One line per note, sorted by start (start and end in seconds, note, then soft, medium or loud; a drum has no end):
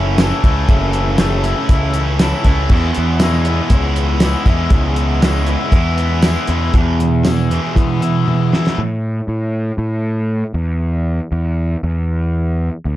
0.00 0.31 F#1 loud
0.00 0.68 C#3 medium
0.00 0.18 E3 medium
0.00 0.19 E3 medium
0.00 0.18 A3 medium
0.00 0.43 A3 medium
0.00 0.18 C#4 medium
0.00 1.20 C#4 medium
0.00 0.20 E4 medium
0.00 1.69 E4 medium
0.18 0.69 E3 medium
0.18 0.94 E3 medium
0.18 0.44 A3 medium
0.18 0.44 C#4 medium
0.18 0.43 E4 medium
0.18 snare loud
0.18 closed hi-hat medium
0.18 tambourine loud
0.43 0.65 C#2 medium
0.43 1.17 A3 medium
0.43 0.69 A3 medium
0.43 0.69 C#4 medium
0.43 0.70 E4 medium
0.43 kick medium
0.43 closed hi-hat medium
0.69 1.53 F#1 loud
0.69 1.18 C#3 medium
0.69 1.95 C#3 medium
0.69 1.19 E3 medium
0.69 1.19 A3 medium
0.69 1.20 C#4 medium
0.69 1.21 E4 medium
0.69 kick loud
0.69 closed hi-hat medium
0.93 2.20 E3 medium
0.93 closed hi-hat medium
1.18 1.70 C#3 loud
1.18 2.19 E3 loud
1.18 2.43 A3 medium
1.18 1.46 A3 loud
1.18 1.45 C#4 loud
1.18 1.45 E4 loud
1.18 snare loud
1.18 closed hi-hat loud
1.18 tambourine loud
1.44 2.20 A3 medium
1.44 1.93 C#4 medium
1.44 2.20 C#4 medium
1.44 2.22 E4 medium
1.44 closed hi-hat medium
1.69 2.32 C#2 loud
1.69 3.69 E4 medium
1.69 kick medium
1.69 closed hi-hat loud
1.94 2.70 C#4 medium
1.94 closed hi-hat medium
2.19 2.71 E3 medium
2.19 2.92 E3 medium
2.19 2.46 A3 medium
2.19 2.45 C#4 medium
2.19 2.45 E4 medium
2.19 snare loud
2.19 closed hi-hat loud
2.19 tambourine loud
2.44 2.66 C#2 loud
2.44 2.70 A3 medium
2.44 2.70 C#4 medium
2.44 2.72 E4 medium
2.44 kick medium
2.44 closed hi-hat medium
2.69 4.69 E2 medium
2.69 2.91 E2 loud
2.69 3.20 E2 loud
2.69 3.20 B2 medium
2.69 3.21 E3 loud
2.69 3.22 G#3 loud
2.69 3.22 B3 medium
2.69 3.22 E4 loud
2.69 kick loud
2.69 crash medium
2.93 4.19 E3 medium
2.93 closed hi-hat medium
2.98 3.60 E2 medium
3.20 4.70 E2 loud
3.20 3.72 B2 loud
3.20 3.48 E3 loud
3.20 4.43 G#3 medium
3.20 3.47 G#3 loud
3.20 3.46 B3 loud
3.20 3.45 E4 loud
3.20 snare loud
3.20 closed hi-hat loud
3.20 tambourine loud
3.45 4.21 E3 medium
3.45 4.22 G#3 medium
3.45 3.94 B3 medium
3.45 4.23 B3 medium
3.45 4.23 E4 medium
3.45 closed hi-hat medium
3.69 4.34 C#2 loud
3.69 4.96 E4 medium
3.69 kick loud
3.69 closed hi-hat loud
3.94 5.21 B3 medium
3.94 closed hi-hat medium
4.20 4.93 E3 medium
4.20 4.48 E3 medium
4.20 4.47 G#3 medium
4.20 4.47 B3 medium
4.20 4.46 E4 medium
4.20 snare loud
4.20 closed hi-hat loud
4.20 tambourine loud
4.43 4.67 E2 medium
4.43 5.19 G#3 medium
4.43 4.72 B3 medium
4.43 4.72 E4 medium
4.43 kick medium
4.43 closed hi-hat medium
4.48 4.71 E3 medium
4.48 4.71 G#3 medium
4.69 5.55 C#2 loud
4.69 5.97 E2 medium
4.69 5.20 E2 medium
4.69 5.21 B2 medium
4.69 5.21 E3 loud
4.69 5.21 G#3 loud
4.69 5.22 B3 loud
4.69 5.22 E4 loud
4.69 kick loud
4.69 closed hi-hat medium
4.95 6.20 E3 medium
4.95 closed hi-hat medium
5.20 5.73 E2 loud
5.20 5.73 B2 loud
5.20 5.48 E3 loud
5.20 6.46 G#3 medium
5.20 5.47 G#3 medium
5.20 5.46 B3 loud
5.20 5.45 E4 loud
5.20 snare loud
5.20 closed hi-hat loud
5.20 tambourine loud
5.44 5.95 B3 medium
5.44 6.23 B3 medium
5.44 6.24 E4 medium
5.44 closed hi-hat medium
5.49 6.21 E3 medium
5.49 6.22 G#3 medium
5.70 6.36 E2 loud
5.70 6.73 E4 medium
5.70 kick medium
5.70 closed hi-hat loud
5.96 6.73 B3 medium
5.96 closed hi-hat medium
6.21 6.73 E3 medium
6.21 6.50 E3 medium
6.21 6.49 G#3 medium
6.21 6.49 B3 medium
6.21 6.48 E4 medium
6.21 snare loud
6.21 closed hi-hat loud
6.21 tambourine loud
6.47 6.70 E2 loud
6.47 6.73 G#3 medium
6.47 6.74 G#3 medium
6.47 6.73 B3 medium
6.47 6.73 E4 medium
6.47 closed hi-hat medium
6.51 6.74 E3 medium
6.73 6.97 E2 medium
6.73 7.58 E2 medium
6.73 8.02 E2 medium
6.73 6.98 B2 medium
6.73 6.98 E3 medium
6.73 kick loud
6.73 closed hi-hat medium
7.00 7.22 E2 medium
7.00 7.23 B2 medium
7.00 closed hi-hat medium
7.23 7.47 E2 medium
7.23 7.47 B2 medium
7.23 8.53 E3 medium
7.23 snare loud
7.23 closed hi-hat medium
7.23 tambourine loud
7.50 7.74 E2 medium
7.50 7.75 B2 loud
7.50 7.75 E3 medium
7.50 8.25 G#3 medium
7.50 closed hi-hat medium
7.76 7.99 E2 medium
7.76 8.00 B2 medium
7.76 8.60 E3 loud
7.76 8.78 B3 medium
7.76 kick medium
7.76 closed hi-hat medium
8.00 8.24 E2 medium
8.00 8.24 B2 medium
8.00 8.52 E4 medium
8.00 closed hi-hat medium
8.25 8.49 E2 medium
8.25 8.49 B2 medium
8.25 8.78 G#3 medium
8.25 high tom medium
8.53 8.76 E2 medium
8.53 8.77 B2 medium
8.53 8.77 E3 medium
8.53 8.78 E4 medium
8.53 snare medium
8.67 snare medium
8.78 9.20 A2 medium
9.28 9.71 A2 medium
9.78 10.42 A2 medium
10.54 11.19 E2 medium
11.32 11.75 E2 medium
11.83 12.69 E2 medium
12.85 12.96 D2 medium